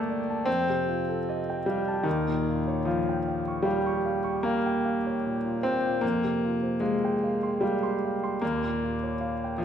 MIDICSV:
0, 0, Header, 1, 2, 480
1, 0, Start_track
1, 0, Tempo, 793651
1, 1243, Time_signature, 5, 2, 24, 8
1, 5836, End_track
2, 0, Start_track
2, 0, Title_t, "Grand piano"
2, 0, Program_c, 0, 0
2, 0, Control_c, 0, 64, 127
2, 0, Note_on_c, 0, 43, 51
2, 0, Note_on_c, 0, 50, 37
2, 0, Note_on_c, 0, 57, 84
2, 0, Note_on_c, 0, 58, 83
2, 0, Note_on_c, 0, 60, 80
2, 0, Note_on_c, 0, 62, 42
2, 0, Note_on_c, 0, 69, 39
2, 0, Note_on_c, 0, 74, 45
2, 0, Note_on_c, 0, 79, 49
2, 0, Note_on_c, 0, 81, 42
2, 58, Note_off_c, 0, 74, 0
2, 58, Note_on_c, 0, 74, 42
2, 122, Note_off_c, 0, 81, 0
2, 181, Note_on_c, 0, 81, 44
2, 243, Note_off_c, 0, 74, 0
2, 262, Note_off_c, 0, 43, 0
2, 275, Note_off_c, 0, 60, 0
2, 275, Note_on_c, 0, 60, 94
2, 285, Note_off_c, 0, 57, 0
2, 292, Note_on_c, 0, 41, 52
2, 293, Note_off_c, 0, 81, 0
2, 295, Control_c, 0, 64, 0
2, 296, Note_off_c, 0, 62, 0
2, 298, Note_off_c, 0, 79, 0
2, 299, Note_off_c, 0, 50, 0
2, 299, Note_off_c, 0, 58, 0
2, 299, Note_off_c, 0, 69, 0
2, 397, Control_c, 0, 64, 127
2, 419, Note_on_c, 0, 48, 37
2, 535, Note_on_c, 0, 65, 42
2, 604, Note_off_c, 0, 48, 0
2, 658, Note_on_c, 0, 69, 41
2, 721, Note_off_c, 0, 65, 0
2, 781, Note_on_c, 0, 75, 44
2, 841, Note_off_c, 0, 69, 0
2, 905, Note_on_c, 0, 79, 43
2, 962, Note_off_c, 0, 75, 0
2, 997, Note_off_c, 0, 60, 0
2, 1005, Note_on_c, 0, 55, 78
2, 1022, Note_on_c, 0, 77, 45
2, 1085, Note_off_c, 0, 79, 0
2, 1137, Note_on_c, 0, 81, 47
2, 1205, Note_off_c, 0, 77, 0
2, 1224, Note_off_c, 0, 41, 0
2, 1230, Note_on_c, 0, 51, 84
2, 1245, Note_off_c, 0, 55, 0
2, 1248, Note_on_c, 0, 39, 51
2, 1251, Note_off_c, 0, 81, 0
2, 1253, Control_c, 0, 64, 0
2, 1362, Control_c, 0, 64, 127
2, 1375, Note_on_c, 0, 46, 41
2, 1503, Note_on_c, 0, 65, 42
2, 1566, Note_off_c, 0, 46, 0
2, 1619, Note_on_c, 0, 73, 43
2, 1691, Note_off_c, 0, 65, 0
2, 1725, Note_on_c, 0, 53, 72
2, 1726, Note_off_c, 0, 51, 0
2, 1739, Note_on_c, 0, 77, 38
2, 1810, Note_off_c, 0, 73, 0
2, 1868, Note_on_c, 0, 79, 43
2, 1929, Note_off_c, 0, 77, 0
2, 1985, Note_on_c, 0, 77, 42
2, 2052, Note_off_c, 0, 79, 0
2, 2103, Note_on_c, 0, 85, 41
2, 2170, Note_off_c, 0, 77, 0
2, 2193, Note_on_c, 0, 55, 82
2, 2209, Note_off_c, 0, 53, 0
2, 2209, Note_on_c, 0, 77, 48
2, 2289, Note_off_c, 0, 85, 0
2, 2337, Note_on_c, 0, 85, 44
2, 2403, Note_off_c, 0, 77, 0
2, 2455, Note_on_c, 0, 77, 38
2, 2528, Note_off_c, 0, 85, 0
2, 2564, Note_on_c, 0, 85, 44
2, 2647, Note_off_c, 0, 77, 0
2, 2680, Note_on_c, 0, 58, 85
2, 2684, Note_off_c, 0, 55, 0
2, 2695, Note_on_c, 0, 77, 47
2, 2761, Note_off_c, 0, 85, 0
2, 2821, Note_on_c, 0, 79, 41
2, 2884, Note_off_c, 0, 77, 0
2, 2936, Note_on_c, 0, 77, 44
2, 3005, Note_off_c, 0, 79, 0
2, 3065, Note_on_c, 0, 73, 37
2, 3122, Note_off_c, 0, 77, 0
2, 3179, Note_on_c, 0, 46, 43
2, 3245, Note_off_c, 0, 73, 0
2, 3299, Note_on_c, 0, 65, 36
2, 3362, Note_off_c, 0, 46, 0
2, 3396, Note_off_c, 0, 58, 0
2, 3406, Note_on_c, 0, 60, 89
2, 3427, Note_on_c, 0, 46, 41
2, 3482, Note_off_c, 0, 65, 0
2, 3543, Note_on_c, 0, 65, 37
2, 3608, Note_off_c, 0, 46, 0
2, 3622, Note_off_c, 0, 39, 0
2, 3636, Note_on_c, 0, 58, 81
2, 3646, Note_off_c, 0, 60, 0
2, 3647, Note_on_c, 0, 41, 50
2, 3654, Note_off_c, 0, 65, 0
2, 3656, Control_c, 0, 64, 0
2, 3754, Control_c, 0, 64, 127
2, 3773, Note_on_c, 0, 48, 37
2, 3895, Note_on_c, 0, 65, 40
2, 3961, Note_off_c, 0, 48, 0
2, 4008, Note_on_c, 0, 72, 36
2, 4082, Note_off_c, 0, 65, 0
2, 4114, Note_on_c, 0, 56, 77
2, 4121, Note_off_c, 0, 58, 0
2, 4128, Note_on_c, 0, 77, 42
2, 4198, Note_off_c, 0, 72, 0
2, 4261, Note_on_c, 0, 79, 43
2, 4320, Note_off_c, 0, 77, 0
2, 4378, Note_on_c, 0, 77, 40
2, 4449, Note_off_c, 0, 79, 0
2, 4495, Note_on_c, 0, 84, 39
2, 4569, Note_off_c, 0, 77, 0
2, 4600, Note_on_c, 0, 55, 78
2, 4607, Note_off_c, 0, 56, 0
2, 4616, Note_on_c, 0, 77, 43
2, 4689, Note_off_c, 0, 84, 0
2, 4737, Note_on_c, 0, 84, 41
2, 4808, Note_off_c, 0, 77, 0
2, 4867, Note_on_c, 0, 77, 40
2, 4927, Note_off_c, 0, 84, 0
2, 4981, Note_on_c, 0, 84, 45
2, 5051, Note_off_c, 0, 77, 0
2, 5068, Note_off_c, 0, 41, 0
2, 5085, Note_off_c, 0, 55, 0
2, 5089, Note_on_c, 0, 58, 82
2, 5095, Note_off_c, 0, 84, 0
2, 5102, Control_c, 0, 64, 0
2, 5107, Note_on_c, 0, 39, 53
2, 5206, Control_c, 0, 64, 127
2, 5214, Note_on_c, 0, 46, 38
2, 5343, Note_on_c, 0, 65, 39
2, 5404, Note_off_c, 0, 46, 0
2, 5463, Note_on_c, 0, 73, 37
2, 5529, Note_off_c, 0, 65, 0
2, 5569, Note_on_c, 0, 77, 42
2, 5649, Note_off_c, 0, 73, 0
2, 5711, Note_on_c, 0, 79, 41
2, 5759, Note_off_c, 0, 77, 0
2, 5794, Note_on_c, 0, 53, 81
2, 5805, Note_off_c, 0, 58, 0
2, 5807, Note_on_c, 0, 77, 47
2, 5836, Note_off_c, 0, 39, 0
2, 5836, Note_off_c, 0, 53, 0
2, 5836, Note_off_c, 0, 77, 0
2, 5836, Note_off_c, 0, 79, 0
2, 5836, End_track
0, 0, End_of_file